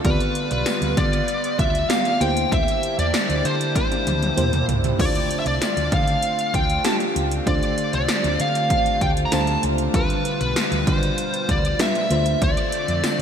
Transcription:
0.04 fingered electric bass D2, fm electric piano D3 B3 F4 G4 D5, analog synth pad G3 B3 F4, lead electric guitar B4, kick, closed hi-hat
0.20 closed hi-hat
0.35 closed hi-hat
0.51 fingered electric bass B1, lead electric guitar B4, closed hi-hat
0.66 snare, closed hi-hat, tambourine
0.82 fingered electric bass D2, closed hi-hat
0.97 fingered electric bass D3, lead electric guitar D5, kick, closed hi-hat
1.13 closed hi-hat
1.28 closed hi-hat
1.44 closed hi-hat
1.59 fingered electric bass D2, lead electric guitar E5, kick, closed hi-hat
1.75 closed hi-hat
1.89 fm electric piano B3 F4 G4 D5, lead electric guitar F5, snare, closed hi-hat, tambourine
2.05 closed hi-hat
2.20 fingered electric bass D2, fm electric piano D3 A#3 E4 G4 C5, analog synth pad A#3 D4 E4 G4, lead electric guitar G5, closed hi-hat
2.37 closed hi-hat
2.52 fingered electric bass D2, lead electric guitar E5, kick, closed hi-hat
2.68 closed hi-hat
2.83 closed hi-hat
2.98 fingered electric bass E2, lead electric guitar D5, closed hi-hat
3.14 snare, closed hi-hat, tambourine
3.29 fingered electric bass D2, closed hi-hat
3.45 fingered electric bass D3, lead electric guitar C5, closed hi-hat
3.61 closed hi-hat
3.76 lead electric guitar C5, kick, closed hi-hat, high tom
3.92 closed hi-hat, high tom
4.07 fingered electric bass D2, closed hi-hat, mid tom
4.23 closed hi-hat, mid tom
4.36 fingered electric bass E2, fm electric piano A#3 E4 G4 C5, closed hi-hat, mid tom
4.53 closed hi-hat, mid tom
4.68 fingered electric bass C#2, closed hi-hat, floor tom
4.84 closed hi-hat, floor tom
4.98 fingered electric bass D2, fm electric piano D3 A3 D4 F4 C5, analog synth pad A3 C4 D4 F4, lead electric guitar D5, kick, crash
5.15 closed hi-hat
5.31 closed hi-hat
5.40 lead electric guitar E5
5.46 fingered electric bass C2, lead electric guitar D5, closed hi-hat
5.62 snare, closed hi-hat, tambourine
5.77 fingered electric bass D2, closed hi-hat
5.92 fingered electric bass D3, lead electric guitar F5, kick, closed hi-hat
6.08 closed hi-hat
6.23 closed hi-hat
6.39 closed hi-hat
6.54 fingered electric bass D2, lead electric guitar G5, kick, closed hi-hat
6.70 closed hi-hat
6.84 fm electric piano A3 D4 F4 G4, lead electric guitar A5, snare, closed hi-hat, tambourine
7.00 closed hi-hat
7.16 fingered electric bass C#2, closed hi-hat
7.31 closed hi-hat
7.46 fingered electric bass D2, fm electric piano D3 A3 D4 F4 C5, lead electric guitar D5, kick, closed hi-hat
7.63 closed hi-hat
7.78 closed hi-hat
7.93 fingered electric bass C2, lead electric guitar D5, closed hi-hat
8.08 snare, closed hi-hat, tambourine
8.24 fingered electric bass D2, closed hi-hat
8.40 fingered electric bass D3, lead electric guitar F5, closed hi-hat
8.55 closed hi-hat
8.70 kick, closed hi-hat
8.86 closed hi-hat
9.01 fingered electric bass D2, lead electric guitar G5, kick, closed hi-hat
9.17 closed hi-hat
9.26 lead electric guitar A#5
9.32 fingered electric bass D2, fm electric piano A3 D4 F4 C5, lead electric guitar A5, snare, closed hi-hat, tambourine
9.47 closed hi-hat
9.63 fingered electric bass C#2, closed hi-hat
9.78 closed hi-hat
9.94 fingered electric bass D2, analog synth pad B2 G3, fm electric piano D3 G3 D4 F4 B4, lead electric guitar B4, kick, closed hi-hat
10.10 closed hi-hat
10.25 closed hi-hat
10.41 fingered electric bass B1, lead electric guitar B4, closed hi-hat
10.56 snare, closed hi-hat, tambourine
10.72 fingered electric bass D2, closed hi-hat
10.87 fingered electric bass D3, lead electric guitar C5, kick, closed hi-hat
11.03 closed hi-hat
11.18 closed hi-hat
11.34 closed hi-hat
11.49 fingered electric bass D2, lead electric guitar D5, kick, closed hi-hat
11.65 closed hi-hat
11.79 fm electric piano G3 D4 F4 B4, lead electric guitar E5, snare, closed hi-hat, tambourine
11.95 closed hi-hat
12.10 fingered electric bass D2, fm electric piano D3 A3 D4 F4 C5, analog synth pad D3 A3 C4, closed hi-hat
12.26 closed hi-hat
12.42 fingered electric bass D2, lead electric guitar D5, kick, closed hi-hat
12.57 closed hi-hat
12.72 closed hi-hat
12.88 fingered electric bass F2, closed hi-hat
13.04 marimba F4, snare, closed hi-hat, tambourine

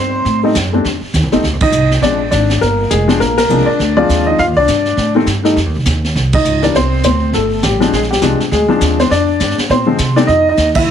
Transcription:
Already playing: upright bass G2, upright piano C4 C5
0.25 upright bass A2, brush sweep, kick, snare
0.43 upright piano G3 A3 C4 D#4
0.55 upright bass F#2, kick, snare, hi-hat pedal
0.73 upright piano G3 A3 C4 D4
0.85 upright bass F2, brush sweep, kick, snare
1.01 muted upright bass stroke
1.14 upright bass D#2, kick, snare, hi-hat pedal
1.23 upright bass C2
1.32 upright bass A1, upright piano G3 A3 C4 D#4, snare
1.43 upright bass D2, brush sweep, kick, snare
1.53 upright bass C2
1.60 upright bass A1, upright piano D#4 D#5, kick, ride
1.72 upright bass C2, hi-hat pedal
1.91 snare
2.02 upright bass A#1, upright piano F3 G#3 C4 D4 D5, brush sweep, kick, snare
2.31 upright bass G#1, upright piano D4 D5, kick, snare, hi-hat pedal
2.50 snare
2.61 upright bass G1, upright piano A#3 A#4, brush sweep, kick, snare
2.90 upright bass F1, upright piano G#3 G#4, kick, snare, hi-hat pedal
3.08 upright piano F3 G#3 C4 D4, snare
3.20 upright bass A#1, upright piano A#3 A#4, brush sweep, kick, snare
3.38 upright piano A#3 A#4, snare, ride
3.49 upright bass C2, upright piano F3 G#3 C4 D4, hi-hat pedal
3.66 upright piano D4 D5, muted upright bass stroke
3.79 upright bass D2, brush sweep, kick, snare
3.97 upright piano F3 G#3 C4 D4 F4 D5
4.09 upright bass D#2, kick, snare, hi-hat pedal
4.26 upright piano D#4 D#5
4.39 upright bass F2, upright piano F4 F5, brush sweep, kick, snare
4.47 upright bass D#2
4.56 upright bass C2, upright piano D4 D5
4.68 upright bass G2, kick, snare, hi-hat pedal
4.85 snare
4.97 upright bass A2, brush sweep, kick, snare
5.15 upright piano D#3 G3 A3 C4
5.26 upright bass G2, kick, snare, hi-hat pedal
5.43 upright piano D#3 G3 A3 D#4, snare
5.56 upright bass F2, brush sweep, kick, snare
5.66 upright bass D#2
5.76 upright bass C2
5.85 upright bass D#2, kick, snare, hi-hat pedal
6.04 snare
6.15 upright bass C2, brush sweep, kick, snare
6.33 upright piano D#4 D#5, kick, ride
6.45 upright bass C#2, hi-hat pedal
6.62 upright piano E3 G3 A#3 D4 D5, snare
6.74 upright bass C2, upright piano C4 C5, brush sweep, kick, snare
7.03 upright bass D2, upright piano C4 C5, kick, snare, hi-hat pedal
7.33 upright bass G1, upright piano A3 A4, brush sweep, kick, snare
7.63 upright bass A1, upright piano G3 G4, kick, snare, hi-hat pedal
7.80 upright piano F3 G#3 C4 D4, snare
7.93 upright bass A#1, upright piano G#3 G#4, brush sweep, kick, snare
8.03 snare
8.11 upright piano G3 G4, snare
8.21 upright bass C2, upright piano F3 G#3 C4 D4, kick, snare, hi-hat pedal
8.40 snare
8.51 upright bass D2, upright piano G#3 G#4, brush sweep, kick, snare
8.68 upright piano F3 G#3 C4 D4
8.81 upright bass D#2, kick, snare, hi-hat pedal
8.99 upright piano C4 C5, snare
9.10 upright bass F2, upright piano D4 D5, brush sweep, kick, snare
9.40 upright bass G2, kick, snare, hi-hat pedal
9.50 snare
9.58 muted upright bass stroke, snare
9.60 snare
9.69 upright bass A#2, upright piano C4 C5, brush sweep, kick, snare
9.86 upright piano D3 F3 G#3 C4
9.98 upright bass C3, kick, snare, hi-hat pedal
10.16 upright piano D#3 G3 A3 C4 D4 D5, snare
10.27 upright bass F2, upright piano D#4 D#5, brush sweep, kick, snare
10.49 upright piano D#4 D#5
10.57 upright bass D#2, kick, snare, hi-hat pedal
10.75 upright piano E4 E5, kick, ride
10.87 upright bass C2

